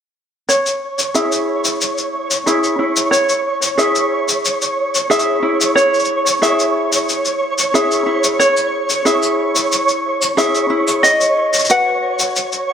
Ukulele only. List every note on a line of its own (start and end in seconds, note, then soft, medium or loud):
0.49 3.10 C#5 medium
1.14 2.46 E4 soft
1.14 2.45 G#4 soft
1.14 2.46 E5 medium
2.46 2.78 E4 medium
2.46 3.76 G#4 medium
2.46 3.78 E5 medium
2.79 3.77 E4 medium
3.11 5.74 C#5 medium
3.77 5.09 E4 medium
3.77 5.08 G#4 medium
3.77 5.10 E5 medium
5.10 5.41 E4 medium
5.10 6.40 G#4 medium
5.10 6.41 E5 medium
5.42 6.41 E4 medium
5.75 8.38 C#5 medium
6.42 7.73 E4 medium
6.42 7.73 G#4 medium
6.42 7.74 E5 medium
7.74 8.05 E4 medium
7.74 9.04 G#4 medium
7.74 9.05 E5 medium
8.06 9.04 E4 medium
8.39 11.03 C#5 medium
9.05 10.36 E4 medium
9.05 10.36 G#4 medium
9.05 10.37 E5 medium
10.37 10.69 E4 medium
10.37 11.10 G#4 medium
10.37 11.11 E5 medium
10.70 11.10 E4 medium
11.03 12.73 D#5 medium
11.70 12.73 F#4 medium
11.70 12.73 B4 medium
11.70 12.73 F#5 medium